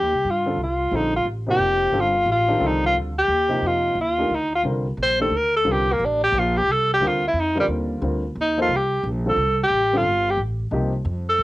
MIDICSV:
0, 0, Header, 1, 4, 480
1, 0, Start_track
1, 0, Tempo, 337838
1, 821, Time_signature, 3, 2, 24, 8
1, 16241, End_track
2, 0, Start_track
2, 0, Title_t, "Tenor saxophone"
2, 0, Program_c, 0, 66
2, 0, Note_on_c, 0, 67, 96
2, 427, Note_on_c, 0, 65, 72
2, 448, Note_off_c, 0, 67, 0
2, 865, Note_off_c, 0, 65, 0
2, 897, Note_on_c, 0, 65, 74
2, 1354, Note_on_c, 0, 63, 84
2, 1375, Note_off_c, 0, 65, 0
2, 1640, Note_off_c, 0, 63, 0
2, 1651, Note_on_c, 0, 65, 85
2, 1791, Note_off_c, 0, 65, 0
2, 2138, Note_on_c, 0, 67, 109
2, 2841, Note_on_c, 0, 65, 92
2, 2862, Note_off_c, 0, 67, 0
2, 3275, Note_off_c, 0, 65, 0
2, 3287, Note_on_c, 0, 65, 78
2, 3785, Note_on_c, 0, 63, 74
2, 3806, Note_off_c, 0, 65, 0
2, 4049, Note_off_c, 0, 63, 0
2, 4058, Note_on_c, 0, 65, 90
2, 4198, Note_off_c, 0, 65, 0
2, 4526, Note_on_c, 0, 67, 108
2, 5208, Note_on_c, 0, 65, 86
2, 5229, Note_off_c, 0, 67, 0
2, 5660, Note_off_c, 0, 65, 0
2, 5695, Note_on_c, 0, 65, 87
2, 6176, Note_on_c, 0, 63, 82
2, 6198, Note_off_c, 0, 65, 0
2, 6456, Note_off_c, 0, 63, 0
2, 6464, Note_on_c, 0, 65, 93
2, 6553, Note_off_c, 0, 65, 0
2, 7137, Note_on_c, 0, 72, 108
2, 7397, Note_off_c, 0, 72, 0
2, 7407, Note_on_c, 0, 69, 86
2, 7619, Note_on_c, 0, 70, 92
2, 7640, Note_off_c, 0, 69, 0
2, 7898, Note_off_c, 0, 70, 0
2, 7905, Note_on_c, 0, 69, 107
2, 8124, Note_on_c, 0, 67, 93
2, 8146, Note_off_c, 0, 69, 0
2, 8413, Note_on_c, 0, 58, 81
2, 8434, Note_off_c, 0, 67, 0
2, 8592, Note_on_c, 0, 62, 93
2, 8613, Note_off_c, 0, 58, 0
2, 8850, Note_off_c, 0, 62, 0
2, 8858, Note_on_c, 0, 67, 115
2, 9065, Note_on_c, 0, 65, 91
2, 9087, Note_off_c, 0, 67, 0
2, 9330, Note_on_c, 0, 67, 102
2, 9351, Note_off_c, 0, 65, 0
2, 9544, Note_on_c, 0, 69, 105
2, 9565, Note_off_c, 0, 67, 0
2, 9820, Note_off_c, 0, 69, 0
2, 9852, Note_on_c, 0, 67, 103
2, 10041, Note_on_c, 0, 65, 93
2, 10063, Note_off_c, 0, 67, 0
2, 10308, Note_off_c, 0, 65, 0
2, 10336, Note_on_c, 0, 64, 87
2, 10511, Note_on_c, 0, 63, 78
2, 10533, Note_off_c, 0, 64, 0
2, 10783, Note_off_c, 0, 63, 0
2, 10794, Note_on_c, 0, 55, 99
2, 10880, Note_off_c, 0, 55, 0
2, 11947, Note_on_c, 0, 63, 84
2, 12200, Note_off_c, 0, 63, 0
2, 12241, Note_on_c, 0, 65, 95
2, 12445, Note_on_c, 0, 67, 81
2, 12466, Note_off_c, 0, 65, 0
2, 12876, Note_off_c, 0, 67, 0
2, 13202, Note_on_c, 0, 69, 92
2, 13618, Note_off_c, 0, 69, 0
2, 13691, Note_on_c, 0, 67, 101
2, 14165, Note_on_c, 0, 65, 97
2, 14186, Note_off_c, 0, 67, 0
2, 14636, Note_on_c, 0, 67, 84
2, 14657, Note_off_c, 0, 65, 0
2, 14774, Note_off_c, 0, 67, 0
2, 16044, Note_on_c, 0, 69, 102
2, 16241, Note_off_c, 0, 69, 0
2, 16241, End_track
3, 0, Start_track
3, 0, Title_t, "Grand piano"
3, 0, Program_c, 1, 0
3, 654, Note_on_c, 1, 50, 69
3, 657, Note_on_c, 1, 55, 57
3, 659, Note_on_c, 1, 60, 64
3, 672, Note_on_c, 1, 69, 74
3, 675, Note_on_c, 1, 65, 58
3, 805, Note_off_c, 1, 50, 0
3, 807, Note_off_c, 1, 55, 0
3, 808, Note_off_c, 1, 60, 0
3, 814, Note_off_c, 1, 69, 0
3, 815, Note_off_c, 1, 65, 0
3, 1302, Note_on_c, 1, 50, 56
3, 1314, Note_on_c, 1, 55, 51
3, 1319, Note_on_c, 1, 60, 56
3, 1323, Note_on_c, 1, 65, 52
3, 1332, Note_on_c, 1, 69, 59
3, 1583, Note_off_c, 1, 50, 0
3, 1589, Note_off_c, 1, 55, 0
3, 1591, Note_off_c, 1, 60, 0
3, 1594, Note_off_c, 1, 65, 0
3, 1598, Note_off_c, 1, 69, 0
3, 2083, Note_on_c, 1, 48, 64
3, 2100, Note_on_c, 1, 53, 60
3, 2101, Note_on_c, 1, 58, 61
3, 2104, Note_on_c, 1, 63, 54
3, 2112, Note_on_c, 1, 67, 77
3, 2706, Note_off_c, 1, 48, 0
3, 2715, Note_off_c, 1, 53, 0
3, 2715, Note_off_c, 1, 58, 0
3, 2716, Note_off_c, 1, 63, 0
3, 2721, Note_off_c, 1, 67, 0
3, 2735, Note_on_c, 1, 50, 64
3, 2739, Note_on_c, 1, 55, 59
3, 2743, Note_on_c, 1, 60, 56
3, 2746, Note_on_c, 1, 65, 60
3, 2751, Note_on_c, 1, 69, 67
3, 3021, Note_off_c, 1, 50, 0
3, 3023, Note_off_c, 1, 55, 0
3, 3025, Note_off_c, 1, 60, 0
3, 3027, Note_off_c, 1, 65, 0
3, 3029, Note_off_c, 1, 69, 0
3, 3525, Note_on_c, 1, 53, 76
3, 3528, Note_on_c, 1, 51, 78
3, 3532, Note_on_c, 1, 62, 70
3, 3540, Note_on_c, 1, 67, 75
3, 3541, Note_on_c, 1, 70, 77
3, 3667, Note_on_c, 1, 50, 68
3, 3676, Note_on_c, 1, 55, 59
3, 3682, Note_on_c, 1, 60, 61
3, 3689, Note_on_c, 1, 65, 55
3, 3696, Note_on_c, 1, 69, 69
3, 4149, Note_off_c, 1, 53, 0
3, 4150, Note_off_c, 1, 51, 0
3, 4152, Note_off_c, 1, 62, 0
3, 4156, Note_off_c, 1, 67, 0
3, 4157, Note_off_c, 1, 70, 0
3, 4418, Note_off_c, 1, 50, 0
3, 4423, Note_off_c, 1, 55, 0
3, 4426, Note_off_c, 1, 60, 0
3, 4429, Note_off_c, 1, 65, 0
3, 4433, Note_off_c, 1, 69, 0
3, 4951, Note_on_c, 1, 48, 69
3, 4963, Note_on_c, 1, 53, 58
3, 4967, Note_on_c, 1, 58, 55
3, 4972, Note_on_c, 1, 63, 61
3, 4976, Note_on_c, 1, 67, 74
3, 5583, Note_off_c, 1, 48, 0
3, 5589, Note_off_c, 1, 53, 0
3, 5591, Note_off_c, 1, 58, 0
3, 5593, Note_off_c, 1, 63, 0
3, 5596, Note_off_c, 1, 67, 0
3, 5939, Note_on_c, 1, 57, 54
3, 5944, Note_on_c, 1, 51, 61
3, 5953, Note_on_c, 1, 62, 55
3, 5962, Note_on_c, 1, 67, 55
3, 5964, Note_on_c, 1, 70, 65
3, 6094, Note_off_c, 1, 57, 0
3, 6096, Note_off_c, 1, 51, 0
3, 6101, Note_off_c, 1, 62, 0
3, 6105, Note_off_c, 1, 67, 0
3, 6106, Note_off_c, 1, 70, 0
3, 6600, Note_on_c, 1, 55, 59
3, 6604, Note_on_c, 1, 50, 61
3, 6607, Note_on_c, 1, 60, 60
3, 6617, Note_on_c, 1, 65, 54
3, 6624, Note_on_c, 1, 70, 69
3, 6877, Note_off_c, 1, 55, 0
3, 6879, Note_off_c, 1, 50, 0
3, 6881, Note_off_c, 1, 60, 0
3, 6886, Note_off_c, 1, 65, 0
3, 6889, Note_off_c, 1, 70, 0
3, 7381, Note_on_c, 1, 51, 57
3, 7388, Note_on_c, 1, 57, 55
3, 7391, Note_on_c, 1, 62, 54
3, 7396, Note_on_c, 1, 67, 56
3, 7407, Note_on_c, 1, 72, 65
3, 7535, Note_off_c, 1, 51, 0
3, 7538, Note_off_c, 1, 57, 0
3, 7540, Note_off_c, 1, 62, 0
3, 7543, Note_off_c, 1, 67, 0
3, 7548, Note_off_c, 1, 72, 0
3, 8020, Note_on_c, 1, 50, 60
3, 8027, Note_on_c, 1, 55, 64
3, 8027, Note_on_c, 1, 60, 61
3, 8044, Note_on_c, 1, 65, 57
3, 8053, Note_on_c, 1, 70, 75
3, 8307, Note_off_c, 1, 50, 0
3, 8311, Note_off_c, 1, 55, 0
3, 8311, Note_off_c, 1, 60, 0
3, 8319, Note_off_c, 1, 65, 0
3, 8324, Note_off_c, 1, 70, 0
3, 9957, Note_on_c, 1, 50, 59
3, 9961, Note_on_c, 1, 55, 60
3, 9969, Note_on_c, 1, 60, 55
3, 9971, Note_on_c, 1, 65, 58
3, 9978, Note_on_c, 1, 70, 72
3, 10235, Note_off_c, 1, 50, 0
3, 10237, Note_off_c, 1, 55, 0
3, 10241, Note_off_c, 1, 60, 0
3, 10242, Note_off_c, 1, 65, 0
3, 10246, Note_off_c, 1, 70, 0
3, 10730, Note_on_c, 1, 50, 68
3, 10739, Note_on_c, 1, 55, 66
3, 10750, Note_on_c, 1, 60, 63
3, 10756, Note_on_c, 1, 70, 75
3, 10760, Note_on_c, 1, 65, 65
3, 11351, Note_off_c, 1, 50, 0
3, 11356, Note_off_c, 1, 55, 0
3, 11361, Note_off_c, 1, 60, 0
3, 11364, Note_off_c, 1, 70, 0
3, 11366, Note_off_c, 1, 65, 0
3, 11391, Note_on_c, 1, 50, 64
3, 11396, Note_on_c, 1, 55, 53
3, 11414, Note_on_c, 1, 60, 56
3, 11417, Note_on_c, 1, 65, 56
3, 11419, Note_on_c, 1, 70, 62
3, 11671, Note_off_c, 1, 50, 0
3, 11673, Note_off_c, 1, 55, 0
3, 11682, Note_off_c, 1, 60, 0
3, 11684, Note_off_c, 1, 65, 0
3, 11685, Note_off_c, 1, 70, 0
3, 12185, Note_on_c, 1, 53, 72
3, 12186, Note_on_c, 1, 58, 70
3, 12197, Note_on_c, 1, 63, 74
3, 12200, Note_on_c, 1, 69, 69
3, 12208, Note_on_c, 1, 72, 79
3, 12335, Note_off_c, 1, 53, 0
3, 12336, Note_off_c, 1, 58, 0
3, 12341, Note_off_c, 1, 63, 0
3, 12342, Note_off_c, 1, 69, 0
3, 12346, Note_off_c, 1, 72, 0
3, 13153, Note_on_c, 1, 50, 56
3, 13155, Note_on_c, 1, 55, 58
3, 13168, Note_on_c, 1, 60, 58
3, 13171, Note_on_c, 1, 65, 55
3, 13173, Note_on_c, 1, 69, 68
3, 13298, Note_off_c, 1, 50, 0
3, 13299, Note_off_c, 1, 55, 0
3, 13305, Note_off_c, 1, 60, 0
3, 13307, Note_off_c, 1, 65, 0
3, 13308, Note_off_c, 1, 69, 0
3, 14113, Note_on_c, 1, 55, 56
3, 14117, Note_on_c, 1, 50, 73
3, 14119, Note_on_c, 1, 60, 65
3, 14127, Note_on_c, 1, 65, 61
3, 14141, Note_on_c, 1, 69, 64
3, 14256, Note_off_c, 1, 55, 0
3, 14258, Note_off_c, 1, 50, 0
3, 14259, Note_off_c, 1, 60, 0
3, 14263, Note_off_c, 1, 65, 0
3, 14271, Note_off_c, 1, 69, 0
3, 15223, Note_on_c, 1, 48, 76
3, 15225, Note_on_c, 1, 53, 67
3, 15232, Note_on_c, 1, 63, 71
3, 15238, Note_on_c, 1, 58, 68
3, 15247, Note_on_c, 1, 67, 77
3, 15501, Note_off_c, 1, 48, 0
3, 15503, Note_off_c, 1, 53, 0
3, 15506, Note_off_c, 1, 63, 0
3, 15509, Note_off_c, 1, 58, 0
3, 15514, Note_off_c, 1, 67, 0
3, 16241, End_track
4, 0, Start_track
4, 0, Title_t, "Upright bass"
4, 0, Program_c, 2, 32
4, 34, Note_on_c, 2, 39, 53
4, 173, Note_off_c, 2, 39, 0
4, 181, Note_on_c, 2, 36, 58
4, 329, Note_off_c, 2, 36, 0
4, 350, Note_on_c, 2, 43, 79
4, 801, Note_off_c, 2, 43, 0
4, 810, Note_on_c, 2, 36, 73
4, 1282, Note_off_c, 2, 36, 0
4, 1300, Note_on_c, 2, 34, 83
4, 1768, Note_off_c, 2, 34, 0
4, 1781, Note_on_c, 2, 33, 79
4, 2249, Note_off_c, 2, 33, 0
4, 2256, Note_on_c, 2, 29, 82
4, 2723, Note_off_c, 2, 29, 0
4, 2731, Note_on_c, 2, 31, 82
4, 3200, Note_off_c, 2, 31, 0
4, 3209, Note_on_c, 2, 33, 93
4, 3685, Note_off_c, 2, 33, 0
4, 3698, Note_on_c, 2, 36, 75
4, 4170, Note_off_c, 2, 36, 0
4, 4183, Note_on_c, 2, 38, 84
4, 4648, Note_off_c, 2, 38, 0
4, 4657, Note_on_c, 2, 39, 78
4, 5130, Note_off_c, 2, 39, 0
4, 5138, Note_on_c, 2, 41, 70
4, 5605, Note_off_c, 2, 41, 0
4, 5614, Note_on_c, 2, 39, 91
4, 6089, Note_off_c, 2, 39, 0
4, 6102, Note_on_c, 2, 38, 77
4, 6573, Note_off_c, 2, 38, 0
4, 6584, Note_on_c, 2, 36, 78
4, 7055, Note_off_c, 2, 36, 0
4, 7063, Note_on_c, 2, 34, 84
4, 7521, Note_off_c, 2, 34, 0
4, 7530, Note_on_c, 2, 38, 87
4, 8007, Note_off_c, 2, 38, 0
4, 8026, Note_on_c, 2, 36, 87
4, 8496, Note_off_c, 2, 36, 0
4, 8512, Note_on_c, 2, 33, 95
4, 8971, Note_off_c, 2, 33, 0
4, 8980, Note_on_c, 2, 34, 95
4, 9452, Note_off_c, 2, 34, 0
4, 9470, Note_on_c, 2, 36, 73
4, 9937, Note_off_c, 2, 36, 0
4, 9949, Note_on_c, 2, 38, 90
4, 10409, Note_off_c, 2, 38, 0
4, 10417, Note_on_c, 2, 41, 88
4, 10890, Note_off_c, 2, 41, 0
4, 10906, Note_on_c, 2, 39, 86
4, 11374, Note_off_c, 2, 39, 0
4, 11389, Note_on_c, 2, 38, 96
4, 11855, Note_off_c, 2, 38, 0
4, 11872, Note_on_c, 2, 39, 89
4, 12331, Note_off_c, 2, 39, 0
4, 12340, Note_on_c, 2, 36, 80
4, 12809, Note_off_c, 2, 36, 0
4, 12836, Note_on_c, 2, 34, 99
4, 13297, Note_off_c, 2, 34, 0
4, 13304, Note_on_c, 2, 36, 89
4, 13770, Note_off_c, 2, 36, 0
4, 13781, Note_on_c, 2, 33, 90
4, 14241, Note_off_c, 2, 33, 0
4, 14249, Note_on_c, 2, 31, 89
4, 14721, Note_off_c, 2, 31, 0
4, 14740, Note_on_c, 2, 33, 85
4, 15206, Note_off_c, 2, 33, 0
4, 15217, Note_on_c, 2, 36, 84
4, 15683, Note_off_c, 2, 36, 0
4, 15696, Note_on_c, 2, 41, 100
4, 16162, Note_off_c, 2, 41, 0
4, 16175, Note_on_c, 2, 45, 86
4, 16241, Note_off_c, 2, 45, 0
4, 16241, End_track
0, 0, End_of_file